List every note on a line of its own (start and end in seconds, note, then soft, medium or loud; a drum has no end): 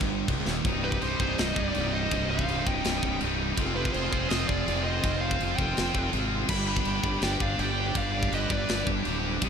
0.00 0.27 G1 medium
0.00 0.29 G2 medium
0.00 0.61 C3 medium
0.00 0.61 G3 medium
0.00 0.63 C4 medium
0.00 0.61 D#4 medium
0.00 kick loud
0.28 0.37 C1 loud
0.28 0.38 C2 medium
0.28 0.38 C2 loud
0.28 kick loud
0.28 crash medium
0.38 0.45 C#1 medium
0.38 0.47 C#2 medium
0.46 0.64 D#1 medium
0.46 0.65 D#2 loud
0.46 snare medium
0.64 0.98 C1 loud
0.64 1.23 C2 medium
0.64 1.20 G2 loud
0.64 3.55 C3 medium
0.64 3.55 G3 medium
0.64 0.73 G3 medium
0.64 0.74 D#4 loud
0.64 3.55 D#4 medium
0.64 kick loud
0.64 china medium
0.69 1.19 C3 loud
0.74 0.81 G3 medium
0.74 0.82 D#4 medium
0.82 0.88 G3 medium
0.82 0.88 D#4 medium
0.82 1.01 G4 medium
0.82 1.02 B4 medium
0.89 0.95 G3 medium
0.89 0.96 D#4 medium
0.89 kick medium
0.96 1.03 G3 medium
0.96 1.04 D#4 medium
1.02 1.19 C1 medium
1.02 1.10 G3 medium
1.02 1.12 D#4 medium
1.02 1.19 G4 medium
1.02 1.19 C5 medium
1.02 china medium
1.11 1.18 G3 medium
1.11 1.19 D#4 medium
1.19 1.36 C1 medium
1.19 1.75 G2 medium
1.19 1.74 C3 medium
1.19 1.26 G3 medium
1.19 1.27 D#4 medium
1.19 1.38 G#4 medium
1.19 1.39 C5 medium
1.19 kick medium
1.23 1.73 C2 medium
1.23 1.34 G3 medium
1.23 1.34 D#4 medium
1.34 1.41 G3 medium
1.34 1.42 D#4 medium
1.38 1.56 C1 medium
1.38 1.49 G3 medium
1.38 1.56 C5 medium
1.38 1.55 D#5 medium
1.38 snare loud
1.38 china medium
1.43 1.49 D#4 medium
1.49 1.57 G3 medium
1.49 1.57 D#4 medium
1.55 1.73 C1 medium
1.55 1.65 G3 medium
1.55 1.65 D#4 medium
1.55 1.92 G4 medium
1.55 1.93 D5 loud
1.55 kick loud
1.65 1.73 G3 medium
1.65 1.73 D#4 medium
1.73 2.09 C1 loud
1.73 2.09 C2 medium
1.73 2.11 G2 medium
1.73 1.80 G3 medium
1.73 1.80 D#4 medium
1.73 china medium
1.78 2.12 C3 medium
1.78 1.87 G3 medium
1.78 1.88 D#4 medium
1.87 1.95 G3 medium
1.87 1.95 D#4 medium
1.93 2.03 G3 medium
1.93 2.03 D#4 medium
1.93 2.28 C5 medium
1.93 2.31 D#5 loud
2.03 2.11 G3 medium
2.03 2.11 D#4 medium
2.11 2.45 C1 loud
2.11 2.65 C2 medium
2.11 2.66 G2 loud
2.11 2.65 C3 loud
2.11 2.19 G3 medium
2.11 2.19 D#4 medium
2.11 kick loud
2.11 china medium
2.20 2.27 G3 medium
2.20 2.27 D#4 medium
2.28 2.35 G3 medium
2.28 2.36 D#4 medium
2.28 2.64 C5 medium
2.28 2.68 F5 loud
2.35 2.41 G3 medium
2.35 2.43 D#4 medium
2.35 kick medium
2.42 2.49 G3 medium
2.42 2.51 D#4 medium
2.48 2.65 C1 medium
2.48 2.57 G3 medium
2.48 2.58 D#4 medium
2.48 china medium
2.58 2.65 G3 medium
2.58 2.66 D#4 medium
2.66 2.83 C1 loud
2.66 3.21 G2 medium
2.66 3.20 C3 medium
2.66 2.73 G3 medium
2.66 2.74 D#4 medium
2.66 3.18 D#5 medium
2.66 3.18 G5 medium
2.66 kick medium
2.70 3.20 C2 medium
2.70 2.81 G3 medium
2.74 2.79 D#4 medium
2.80 2.88 G3 medium
2.80 2.87 D#4 medium
2.84 3.01 C1 medium
2.84 snare loud
2.84 china medium
2.88 2.96 G3 medium
2.88 2.96 D#4 medium
2.96 3.03 G3 medium
2.96 3.04 D#4 medium
3.03 3.20 C1 medium
3.03 3.11 G3 medium
3.03 3.12 D#4 medium
3.03 kick medium
3.12 3.20 G3 medium
3.12 3.19 D#4 medium
3.20 3.55 C1 loud
3.20 3.56 C2 medium
3.20 3.27 G3 medium
3.20 3.27 D#4 medium
3.20 china medium
3.24 3.58 G2 medium
3.24 3.58 C3 medium
3.24 3.34 G3 medium
3.28 3.35 D#4 medium
3.35 3.42 G3 medium
3.35 3.43 D#4 medium
3.42 3.50 G3 medium
3.42 3.51 D#4 medium
3.50 3.58 G3 medium
3.50 3.59 D#4 medium
3.57 3.91 F1 medium
3.57 4.16 F2 loud
3.57 4.12 C3 medium
3.57 6.47 F3 medium
3.57 4.12 F3 loud
3.57 6.47 C4 medium
3.57 3.66 C4 loud
3.57 3.67 F4 loud
3.57 6.47 G#4 medium
3.57 6.48 G5 medium
3.57 kick loud
3.57 china medium
3.67 3.74 C4 medium
3.67 3.75 F4 medium
3.75 3.82 C4 medium
3.75 3.83 F4 medium
3.75 3.93 G4 medium
3.75 3.93 B4 medium
3.83 3.89 C4 medium
3.83 3.90 F4 medium
3.83 kick medium
3.89 3.97 C4 medium
3.89 3.98 F4 medium
3.93 4.11 F1 medium
3.93 4.12 G#4 medium
3.93 4.10 C5 loud
3.93 china medium
3.98 4.05 C4 medium
3.98 4.05 F4 medium
4.05 4.12 C4 medium
4.05 4.13 F4 medium
4.11 4.29 F1 loud
4.11 4.67 C3 medium
4.11 4.66 F3 medium
4.11 4.20 C4 medium
4.11 4.20 F4 medium
4.11 4.32 G#4 medium
4.11 4.29 C5 medium
4.11 kick medium
4.16 4.65 F2 medium
4.16 4.27 C4 medium
4.16 4.27 F4 loud
4.27 4.47 F1 medium
4.27 4.35 C4 medium
4.27 4.35 F4 medium
4.27 4.47 D#5 medium
4.27 china medium
4.31 4.50 C5 medium
4.31 snare loud
4.37 4.43 C4 medium
4.37 4.42 F4 medium
4.42 4.51 C4 medium
4.42 4.50 F4 medium
4.48 4.66 F1 medium
4.48 4.57 C4 medium
4.48 4.59 F4 medium
4.48 4.83 G#4 medium
4.48 4.84 D5 loud
4.48 kick medium
4.58 4.65 C4 medium
4.58 4.66 F4 medium
4.66 5.01 F1 loud
4.66 5.02 F2 medium
4.66 5.04 C3 medium
4.66 4.73 C4 medium
4.66 4.73 F4 medium
4.66 china medium
4.70 5.04 F3 medium
4.70 4.80 C4 medium
4.70 4.81 F4 medium
4.81 4.88 C4 medium
4.81 4.89 F4 medium
4.81 5.19 C5 medium
4.81 5.23 D#5 loud
4.88 4.96 C4 medium
4.88 4.96 F4 medium
4.96 5.04 C4 medium
4.96 5.04 F4 medium
5.04 5.37 F1 loud
5.04 5.58 F2 loud
5.04 5.59 C3 medium
5.04 5.13 C4 medium
5.04 5.12 F4 loud
5.04 kick loud
5.04 china medium
5.08 5.57 F3 medium
5.12 5.20 C4 medium
5.12 5.20 F4 medium
5.20 5.28 C4 medium
5.20 5.28 F4 medium
5.20 5.55 C5 medium
5.20 5.56 F5 loud
5.29 5.35 C4 medium
5.29 5.36 F4 medium
5.29 kick medium
5.35 5.43 C4 medium
5.35 5.44 F4 medium
5.40 5.57 F1 medium
5.40 5.50 C4 medium
5.40 5.51 F4 medium
5.40 china medium
5.51 5.58 C4 medium
5.51 5.59 F4 loud
5.56 5.75 F1 loud
5.56 6.13 C3 medium
5.56 6.12 F3 medium
5.56 5.66 C4 medium
5.56 5.67 F4 medium
5.56 6.09 C5 medium
5.56 6.08 G5 medium
5.56 kick medium
5.62 6.11 F2 medium
5.67 5.73 C4 medium
5.67 5.74 F4 medium
5.73 5.81 C4 medium
5.73 5.83 F4 medium
5.73 china medium
5.78 5.94 F1 medium
5.78 5.89 C4 medium
5.78 snare loud
5.83 5.90 F4 medium
5.90 5.97 C4 medium
5.90 5.98 F4 medium
5.95 6.11 F1 loud
5.95 6.03 C4 medium
5.95 6.04 F4 medium
5.95 kick loud
6.03 6.11 C4 medium
6.03 6.12 F4 medium
6.12 6.46 G#1 loud
6.12 6.48 F2 medium
6.12 6.49 C3 medium
6.12 6.50 F3 medium
6.12 6.19 C4 medium
6.12 6.20 F4 medium
6.12 china medium
6.19 6.27 C4 medium
6.19 6.28 F4 medium
6.27 6.35 C4 medium
6.27 6.36 F4 medium
6.36 6.43 C4 medium
6.36 6.43 F4 medium
6.43 6.50 C4 medium
6.43 6.50 F4 medium
6.48 6.82 G1 loud
6.48 7.07 G2 loud
6.48 7.04 D3 medium
6.48 9.49 G3 medium
6.48 6.57 D4 medium
6.48 9.38 G4 medium
6.48 6.57 G4 loud
6.48 9.38 B4 medium
6.48 6.67 G5 loud
6.48 6.66 B5 loud
6.48 kick loud
6.48 crash loud
6.48 china medium
6.52 7.03 G3 loud
6.57 6.65 D4 medium
6.57 6.65 G4 medium
6.66 6.73 D4 medium
6.66 6.74 G4 medium
6.66 7.19 G5 loud
6.66 7.24 B5 loud
6.73 6.80 D4 medium
6.73 6.80 G4 medium
6.73 kick loud
6.80 6.88 D4 medium
6.80 6.88 G4 medium
6.85 7.02 G1 loud
6.85 6.96 D4 medium
6.85 china medium
6.91 6.96 G4 medium
6.96 7.03 D4 medium
6.96 7.03 G4 medium
7.03 7.20 G1 loud
7.03 7.59 D3 medium
7.03 7.62 G3 medium
7.03 7.10 D4 medium
7.03 7.11 G4 medium
7.03 kick medium
7.08 7.57 G2 medium
7.08 7.18 D4 medium
7.12 7.19 G4 medium
7.18 7.39 G1 medium
7.18 7.26 D4 medium
7.18 7.26 G4 medium
7.18 china medium
7.23 7.34 D4 medium
7.23 7.33 G4 medium
7.23 7.40 D5 loud
7.23 7.42 G5 loud
7.23 snare loud
7.34 7.42 D4 medium
7.34 7.41 G4 medium
7.40 7.57 G1 medium
7.40 7.48 D4 medium
7.40 7.49 G4 medium
7.40 7.60 D5 medium
7.40 7.60 F5 medium
7.40 kick medium
7.48 7.56 D4 medium
7.48 7.57 G4 medium
7.56 7.92 G1 loud
7.56 7.94 G2 medium
7.56 7.64 D4 medium
7.56 7.64 G4 medium
7.56 7.97 G5 loud
7.56 china medium
7.61 7.95 D3 medium
7.61 7.99 G3 medium
7.61 7.71 D4 medium
7.61 7.70 G4 medium
7.61 7.96 D5 medium
7.71 7.79 D4 medium
7.71 7.78 G4 medium
7.80 7.87 D4 medium
7.80 7.87 G4 medium
7.88 7.95 D4 medium
7.88 7.95 G4 medium
7.95 8.28 G1 loud
7.95 8.49 G2 medium
7.95 8.50 D3 loud
7.95 8.03 D4 medium
7.95 8.04 G4 medium
7.95 8.31 D5 medium
7.95 8.34 F5 medium
7.95 kick loud
7.95 china medium
7.99 8.49 G3 loud
8.04 8.11 D4 medium
8.04 8.11 G4 medium
8.11 8.19 D4 medium
8.11 8.19 G4 medium
8.19 8.26 D4 medium
8.19 8.26 G4 medium
8.19 kick medium
8.27 8.34 D4 medium
8.27 8.34 G4 medium
8.32 8.49 G1 medium
8.32 8.41 D4 medium
8.32 8.41 G4 medium
8.32 8.50 B4 medium
8.32 8.51 D#5 loud
8.32 china medium
8.42 8.49 D4 medium
8.42 8.49 G4 medium
8.49 8.67 G1 loud
8.49 9.05 D3 medium
8.49 9.08 G3 medium
8.49 8.57 D4 medium
8.49 8.57 G4 medium
8.49 8.86 B4 medium
8.49 8.85 D5 medium
8.49 kick loud
8.53 9.04 G2 medium
8.53 8.65 D4 medium
8.53 8.65 G4 medium
8.65 8.86 G1 medium
8.65 8.72 D4 medium
8.65 8.72 G4 medium
8.65 china medium
8.70 8.79 D4 medium
8.70 8.80 G4 medium
8.70 snare loud
8.80 8.87 D4 medium
8.80 8.87 G4 medium
8.86 9.03 G1 medium
8.86 8.95 D4 medium
8.86 8.95 G4 medium
8.86 kick loud
8.95 9.02 D4 medium
8.95 9.03 G4 medium
9.03 9.39 D1 medium
9.03 9.41 G2 medium
9.03 9.10 D4 medium
9.03 9.10 G4 medium
9.03 china medium
9.07 9.42 D3 medium
9.07 9.45 G3 medium
9.07 9.18 D4 medium
9.07 9.18 G4 medium
9.19 9.25 D4 medium
9.19 9.26 G4 medium
9.25 9.33 D4 medium
9.25 9.33 G4 medium
9.33 9.41 D4 medium
9.33 9.42 G4 medium
9.41 9.49 C1 loud
9.41 9.49 C2 medium
9.41 9.49 G2 loud
9.41 9.49 C3 medium
9.41 9.49 C3 loud
9.41 9.49 G3 loud
9.41 9.49 D#4 medium
9.41 9.49 D#4 loud
9.41 kick loud
9.41 china medium